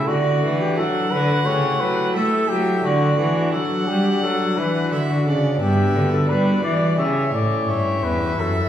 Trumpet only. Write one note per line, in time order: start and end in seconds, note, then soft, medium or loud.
0.07 0.63 F#4 loud
0.61 0.79 G4 medium
0.77 1.13 A4 medium
1.11 1.47 B4 loud
1.46 1.82 C#5 loud
1.80 2.15 B4 medium
2.15 2.51 A4 medium
2.50 2.84 G4 medium
2.84 3.18 F#4 medium
3.19 3.54 F#4 medium
3.52 3.90 A4 medium
3.88 4.24 G4 medium
4.23 4.59 A4 loud
4.58 4.94 B4 medium
5.10 5.26 F#4 medium
5.61 6.09 G4 medium
6.12 6.31 A4 medium
6.29 6.63 B4 medium
6.63 7.00 D5 medium
6.99 7.33 E5 medium
7.34 7.71 D5 medium
7.69 8.05 C#5 medium
8.04 8.42 B4 medium
8.40 8.69 A4 medium